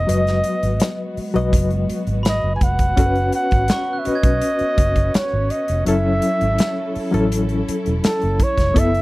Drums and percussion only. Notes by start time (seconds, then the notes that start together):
0.09 closed hi-hat
0.27 snare, closed hi-hat
0.44 closed hi-hat
0.63 closed hi-hat
0.80 snare, closed hi-hat
1.17 open hi-hat
1.36 closed hi-hat
1.53 kick, closed hi-hat
1.70 closed hi-hat
1.90 closed hi-hat
2.07 closed hi-hat
2.25 snare, closed hi-hat
2.61 kick, closed hi-hat
2.79 kick, closed hi-hat
2.97 kick, closed hi-hat
3.15 closed hi-hat
3.33 closed hi-hat
3.51 kick, closed hi-hat
3.68 snare, closed hi-hat
4.05 closed hi-hat
4.23 kick, closed hi-hat
4.42 closed hi-hat
4.59 closed hi-hat
4.78 kick, closed hi-hat
4.96 kick, closed hi-hat
5.14 snare, closed hi-hat
5.50 closed hi-hat
5.68 closed hi-hat
5.86 closed hi-hat
6.22 closed hi-hat
6.41 closed hi-hat
6.58 snare, closed hi-hat
6.96 open hi-hat
7.14 closed hi-hat
7.32 closed hi-hat
7.49 closed hi-hat
7.69 closed hi-hat
7.86 closed hi-hat
8.04 snare, closed hi-hat
8.21 closed hi-hat
8.40 kick, closed hi-hat
8.58 kick, snare, closed hi-hat
8.76 kick, closed hi-hat
8.95 closed hi-hat